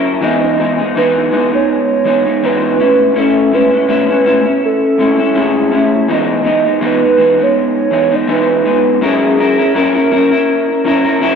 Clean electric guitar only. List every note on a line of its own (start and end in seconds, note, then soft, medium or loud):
0.00 0.21 F#3 medium
0.00 0.22 C#4 medium
0.00 0.22 E4 medium
0.00 0.23 A#4 medium
0.21 0.57 E3 medium
0.21 0.58 G#3 medium
0.21 0.59 B3 medium
0.21 0.59 D#4 medium
0.58 0.78 E3 medium
0.58 0.79 G#3 medium
0.58 0.78 B3 medium
0.58 0.77 D#4 medium
0.78 0.96 G#3 soft
0.78 0.96 B3 soft
0.78 0.95 D#4 soft
0.96 1.30 E3 medium
0.96 1.31 G#3 medium
0.96 1.32 B3 medium
0.96 1.32 D#4 medium
1.31 1.52 E3 medium
1.31 1.52 G#3 medium
1.31 1.52 B3 medium
1.31 1.50 D#4 medium
1.52 2.04 G#3 soft
1.52 2.05 B3 soft
1.52 2.05 D#4 soft
2.05 2.25 E3 soft
2.05 2.25 G#3 medium
2.05 2.25 B3 medium
2.05 2.24 D#4 medium
2.25 2.42 G#3 soft
2.25 2.42 B3 soft
2.25 2.42 D#4 soft
2.43 2.79 E3 medium
2.43 2.78 G#3 medium
2.43 2.79 B3 medium
2.43 2.80 D#4 medium
2.79 3.13 A2 soft
2.79 3.16 G#3 soft
2.79 3.14 C#4 medium
2.79 3.15 E4 medium
3.14 3.51 A2 medium
3.14 3.52 C#4 medium
3.14 3.52 E4 medium
3.52 3.72 A2 medium
3.52 3.72 G#3 medium
3.52 3.71 C#4 medium
3.52 3.70 E4 medium
3.71 3.87 G#3 soft
3.71 3.88 C#4 soft
3.71 3.88 E4 soft
3.88 4.08 A2 medium
3.88 4.09 G#3 medium
3.88 4.08 C#4 medium
3.88 4.07 E4 medium
4.08 4.24 G#3 soft
4.08 4.24 C#4 soft
4.08 4.25 E4 soft
4.24 4.45 A2 medium
4.24 4.45 G#3 medium
4.24 4.44 C#4 medium
4.24 4.43 E4 medium
4.45 4.99 C#4 soft
4.45 4.98 E4 soft
4.98 5.18 A2 medium
4.98 5.19 G#3 medium
4.98 5.18 C#4 medium
4.98 5.16 E4 medium
5.17 5.34 G#3 soft
5.17 5.34 C#4 soft
5.17 5.35 E4 soft
5.34 5.70 A2 medium
5.34 5.70 G#3 medium
5.34 5.71 C#4 medium
5.34 5.72 E4 medium
5.71 6.08 A2 soft
5.71 6.08 G#3 soft
5.71 6.08 C#4 soft
5.71 6.09 E4 medium
6.08 6.42 E3 medium
6.08 6.43 G#3 medium
6.08 6.44 B3 medium
6.08 6.45 D#4 medium
6.44 6.64 E3 soft
6.44 6.65 G#3 medium
6.44 6.65 B3 medium
6.44 6.63 D#4 medium
6.65 6.80 G#3 soft
6.65 6.81 B3 soft
6.65 6.81 D#4 soft
6.81 7.01 E3 medium
6.81 7.02 G#3 medium
6.81 7.02 B3 medium
6.81 7.00 D#4 medium
7.01 7.17 G#3 soft
7.01 7.18 B3 soft
7.01 7.18 D#4 soft
7.17 7.38 E3 medium
7.17 7.38 G#3 soft
7.17 7.38 B3 medium
7.17 7.37 D#4 medium
7.38 7.91 G#3 soft
7.38 7.92 B3 soft
7.38 7.91 D#4 soft
7.91 8.11 E3 medium
7.91 8.12 G#3 medium
7.91 8.11 B3 medium
7.91 8.10 D#4 medium
8.11 8.26 G#3 soft
8.11 8.27 B3 soft
8.11 8.28 D#4 soft
8.27 8.63 E3 medium
8.27 8.64 G#3 medium
8.27 8.64 B3 medium
8.27 8.65 D#4 medium
8.64 9.01 E3 soft
8.64 9.01 G#3 soft
8.64 9.02 B3 medium
8.64 9.02 D#4 medium
9.01 9.37 F#3 medium
9.01 9.38 C#4 medium
9.01 9.39 E4 medium
9.01 9.39 A#4 medium
9.38 9.58 F#3 soft
9.38 9.58 C#4 medium
9.38 9.58 E4 medium
9.38 9.57 A#4 medium
9.58 9.74 C#4 soft
9.58 9.74 E4 soft
9.58 9.75 A#4 soft
9.75 9.95 F#3 medium
9.75 9.95 C#4 medium
9.75 9.94 E4 medium
9.75 9.93 A#4 medium
9.94 10.11 C#4 soft
9.94 10.11 E4 soft
9.94 10.11 A#4 soft
10.11 10.31 F#3 soft
10.11 10.32 C#4 medium
10.11 10.31 E4 medium
10.11 10.30 A#4 medium
10.31 10.84 C#4 soft
10.31 10.85 E4 soft
10.31 10.85 A#4 soft
10.84 11.05 F#3 medium
10.84 11.05 C#4 medium
10.84 11.04 E4 medium
10.84 11.03 A#4 medium
11.05 11.20 C#4 soft
11.05 11.21 E4 soft
11.05 11.21 A#4 medium
11.21 11.35 F#3 medium
11.21 11.35 C#4 medium
11.21 11.35 E4 medium
11.21 11.35 A#4 medium